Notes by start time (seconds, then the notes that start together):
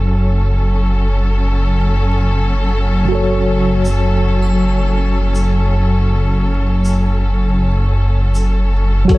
Already playing: F#1 F#3 C#4 F#4 A4 C#5
3.05 F#3 F#4
3.12 A4 C#5
3.85 shaker
4.42 triangle
5.35 shaker
6.85 shaker
8.35 shaker
9.05 F#3 F#4
9.09 F#1 F#3 C#4 A4, kick, closed hi-hat
9.15 C#5